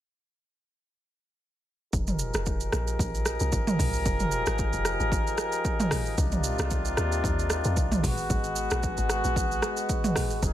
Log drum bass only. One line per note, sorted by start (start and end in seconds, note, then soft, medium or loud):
1.93 2.31 F1 loud
2.34 2.70 F1 medium
2.73 2.97 A#1 loud
2.99 3.38 A#1 medium
3.41 3.52 C2 loud
3.53 3.77 G#1 medium
3.79 4.04 C2 loud
4.06 4.44 F1 loud
4.47 4.71 G#1 medium
4.73 4.98 F1 medium
5.00 5.36 G#1 medium
6.18 6.56 C2 loud
6.59 6.95 C2 loud
6.98 7.22 D#2 medium
7.24 7.62 D#2 loud
7.65 7.76 F2 loud
7.77 8.02 C2 medium
8.04 8.28 G#1 loud
8.30 8.68 G#1 loud
8.71 8.96 A#1 medium
8.98 9.23 G#1 medium
9.25 9.60 A#1 medium
10.42 10.53 F1 loud